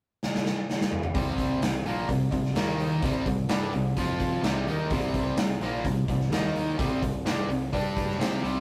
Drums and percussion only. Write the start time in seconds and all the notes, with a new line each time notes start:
0.23 snare
0.35 snare
0.46 snare
0.70 snare
0.81 snare
0.92 mid tom
1.03 mid tom
1.15 kick, open hi-hat
1.38 kick, open hi-hat
1.62 snare, open hi-hat
1.86 open hi-hat
2.09 kick, open hi-hat
2.32 kick, open hi-hat
2.45 snare
2.55 snare, open hi-hat
2.69 snare
2.79 open hi-hat
3.02 kick, open hi-hat
3.26 kick, open hi-hat
3.49 snare, open hi-hat
3.73 open hi-hat
3.96 kick, open hi-hat
4.19 kick, open hi-hat
4.43 snare, open hi-hat
4.67 open hi-hat
4.90 kick, open hi-hat
5.14 kick, open hi-hat
5.37 snare, open hi-hat
5.61 open hi-hat
5.84 kick, open hi-hat
6.08 kick, open hi-hat
6.20 snare
6.32 snare, open hi-hat
6.45 snare
6.55 open hi-hat
6.79 kick, open hi-hat
7.02 kick, open hi-hat
7.26 snare, open hi-hat
7.50 open hi-hat
7.73 kick, open hi-hat
7.97 kick, open hi-hat
8.09 snare
8.21 snare, open hi-hat
8.44 open hi-hat